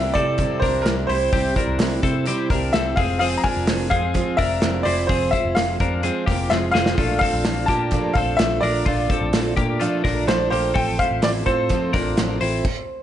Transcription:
Already playing: C2 C3 G3 C4 D4 E4 A#4 E5
0.14 C3 G3 C4 E4 A4 D5, kick, hi-hat pedal, open hi-hat
0.38 C3 G3 C4 E4, kick, clap, hi-hat pedal, open hi-hat
0.60 C2 D4 A#4 C5, kick, snare, hi-hat pedal, open hi-hat
0.64 G3 C4
0.82 C2 C3 A#4, hi-hat pedal, open hi-hat
0.86 G3 C4 E4, snare, clap
1.07 C2 C4 E4 C5, hi-hat pedal, open hi-hat
1.12 G3
1.33 C2 C3 G3 C4 E4 G4, kick, hi-hat pedal, open hi-hat
1.56 G3 C4 D4 E4 A#4, kick, hi-hat pedal, open hi-hat
1.68 C2
1.79 C2 C3 G3 C4 E4, snare, clap, hi-hat pedal, open hi-hat
2.03 C3 G3 C4 E4 A4, kick, hi-hat pedal, open hi-hat
2.26 C3 G3 C4 E4 G4, clap, hi-hat pedal, open hi-hat
2.50 C2 G3 C4 D4 E4 A#4, kick, snare, hi-hat pedal, open hi-hat
2.73 C2 C3 G3 C4 E4 A4 E5, snare, clap, hi-hat pedal, open hi-hat
2.96 F1 G#3 C4 F4 G#4 F5, kick, hi-hat pedal, open hi-hat
3.19 F3 G#3 C4 F4 G#4 F5, hi-hat pedal, open hi-hat
3.38 A#5
3.44 G#3 D4 F4 A#4 G#5, kick, hi-hat pedal, open hi-hat
3.57 F1
3.67 F1 F3 G#3 C4 F4, snare, clap, hi-hat pedal, open hi-hat
3.90 F2 G#3 C4 F4 G#4 F5, kick, hi-hat pedal, open hi-hat
4.14 F3 G#3 C4 F4, kick, clap, hi-hat pedal, open hi-hat
4.37 F1 G#3 C4 D4 F4 A#4 E5, kick, snare, hi-hat pedal, open hi-hat
4.62 F1 F3 G#3 C4 F4, snare, clap, hi-hat pedal, open hi-hat
4.83 F1 C4 E4 F4 C5 D5, hi-hat pedal, open hi-hat
4.88 G#3
5.07 F1 F3 G#3 C4 F4 G#4 C5, kick, hi-hat pedal, open hi-hat
5.31 G#3 C4 E4 F4 C5 E5, kick, hi-hat pedal, open hi-hat
5.45 F1
5.55 F1 F3 G#3 C4 F4 F5, snare, clap, hi-hat pedal, open hi-hat
5.80 F2 G#3 C4 D4 F4 A#4, kick, hi-hat pedal, open hi-hat
6.03 F3 G#3 C4 F4 G#4, clap, hi-hat pedal, open hi-hat
6.26 F1 G#3 A#3 C4 F4 G4, kick, snare, hi-hat pedal, open hi-hat
6.50 F1 F3 G#3 C4 F4 E5, snare, clap
6.71 F1 C4 F4 G#4 F5, snare
6.76 G#3 C4
6.86 snare
6.98 A#1 A#2 F3 A3 D4 F4, kick, hi-hat pedal, open hi-hat
7.19 C4 A4 F5, kick, hi-hat pedal, open hi-hat
7.23 A3 D4
7.34 A#1
7.44 F3 A3 D4 F4, snare, clap, hi-hat pedal, open hi-hat
7.66 A#2 A#3 F4 G4 A5, kick, hi-hat pedal, open hi-hat
7.71 A3 D4
7.91 A#2 F3 A3 D4 F4, kick, clap, hi-hat pedal, open hi-hat
8.14 A#1 C4 D4 F4 A4 F5, kick, hi-hat pedal, open hi-hat
8.19 A3
8.37 A#1 F3 A3 E5, snare, clap, hi-hat pedal, open hi-hat
8.42 D4 F4
8.61 A#1 D4 F4 A#4 D5, hi-hat pedal, open hi-hat
8.65 A3
8.86 A#1 A#2 F3 A3 D4 F4, kick, hi-hat pedal, open hi-hat
9.09 A3 C4 D4 F4 A4, kick, hi-hat pedal, open hi-hat
9.21 A#1
9.33 A#1 F3 A3 D4 F4, snare, clap, hi-hat pedal, open hi-hat
9.56 A#2 A3 A#3 D4 F4 G4, kick, hi-hat pedal, open hi-hat
9.80 A#2 F3 A3 D4 F4, clap, hi-hat pedal, open hi-hat
10.04 A#1 A3 D4 F4 A#4, kick, snare, hi-hat pedal, open hi-hat
10.26 A#1 F3 A3 D4 F4 A4 C5, snare, clap, hi-hat pedal, open hi-hat
10.50 A#1 A3 A#3 D4 F4 G4 C5, hi-hat pedal, open hi-hat
10.74 A1 A2 F3 A3 C4 F4 A4 G5, kick, hi-hat pedal, open hi-hat
10.98 A3 C4 E4 F4 C5 F5, kick, hi-hat pedal, open hi-hat
11.11 A1
11.22 A1 F3 A3 C4 F4 D5, snare, clap, hi-hat pedal, open hi-hat
11.46 A2 A3 C4 F4 A4 C5, kick, hi-hat pedal, open hi-hat
11.69 A2 F3 A3 C4 F4, kick, clap, hi-hat pedal, open hi-hat
11.93 A1 A3 C4 D4 F4 A#4, kick, snare, hi-hat pedal, open hi-hat
12.17 A1 F3 A3 C4 F4, snare, clap, hi-hat pedal, open hi-hat
12.41 A1 A3 C4 E4 F4 C5, hi-hat pedal, open hi-hat
12.65 kick, crash

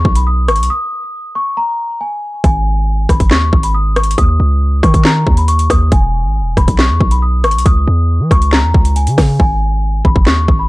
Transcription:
Already playing: C#6
0.05 B1, kick
0.15 B5, closed hi-hat
0.27 D#6
0.48 G#1 C#6, cross-stick, closed hi-hat
0.56 B1, closed hi-hat
0.63 closed hi-hat
0.70 D#6
1.35 C#6
1.57 A#5
2.01 G#5
2.44 G#1 G#5, kick, closed hi-hat
3.09 G#1 B5, kick, cross-stick, closed hi-hat
3.20 kick, closed hi-hat
3.31 D#2 C#6, snare, clap
3.53 G#1, kick
3.63 B5, closed hi-hat
3.74 D#6
3.96 C#6, cross-stick, closed hi-hat
4.03 closed hi-hat
4.11 closed hi-hat
4.18 D#2 D#6, kick, closed hi-hat
4.40 C#2
4.83 D#3 C#6, kick, cross-stick, closed hi-hat
4.94 kick, closed hi-hat
5.05 A#5, snare, clap
5.27 D#2, kick
5.37 B5, closed hi-hat
5.48 C#6, closed hi-hat
5.59 closed hi-hat
5.70 D#2 D#6, kick, cross-stick, closed hi-hat
5.92 E1 G#5, kick, closed hi-hat
6.25 G#1
6.41 E1
6.57 E1 B5, kick, cross-stick, closed hi-hat
6.68 B1, kick, closed hi-hat
6.79 C#6, snare, clap
6.90 E2
7.01 B1, kick
7.11 B5, closed hi-hat
7.22 D#6
7.44 G#1 C#6, cross-stick, closed hi-hat
7.51 B1, closed hi-hat
7.59 closed hi-hat
7.66 C#2 D#6, kick, closed hi-hat
7.88 E2
8.20 E3
8.31 C#2 C#6, kick, cross-stick, closed hi-hat
8.42 closed hi-hat
8.53 A#5, snare, clap
8.64 E2
8.74 C#2, kick
8.85 closed hi-hat
8.96 G#5, closed hi-hat
9.07 C#3, closed hi-hat
9.18 C#3, kick, cross-stick, snare, open hi-hat
9.40 G#1 G#5, kick
10.05 G#1 B5, kick
10.16 kick
10.26 D#2 C#6, snare, clap
10.48 G#1, kick
10.59 B5

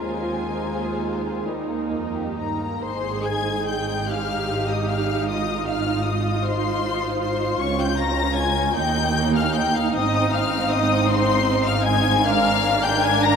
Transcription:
Already playing: F4
0.05 D#2 G#3 C5 G#5
0.29 C4
0.52 D#4
0.75 G#4
0.98 D#4
1.23 C4
1.45 D#2 G3 A#3 D#4 A#4
1.68 A#3
1.92 F2 D#4
2.15 G4
2.38 G2 D#4 A#4 A#5
2.60 A#3
2.82 G#1 G#2 D#4 G#4 C5 C6
3.25 G#5 G#6
3.67 G5 G6
4.08 G4 F5 F6
4.69 D#5 D#6
4.88 F5 F6
5.28 F4 D#5 D#6
5.68 F5 F6
6.06 D#5 D#6
6.44 C5 C6
7.22 C5 C6
7.60 C#2 C#4 C#5 C#6
7.79 G5 G6
7.97 A#5 A#6
8.36 G#5 G#6
8.74 D#2 A#3 D#4 G5 G6
9.34 F5 F6
9.54 G5 G6
9.74 F5 F6
9.94 G#1 G#2 C4 D#5 D#6
10.33 F5 F6
10.71 D#5 D#6
11.09 C5 C6
11.66 F5 F6
11.85 G#5 G#6
12.24 D4 A#4 F5 F6
12.84 G5 G6
13.02 G#5 G#6
13.23 A#5 A#6

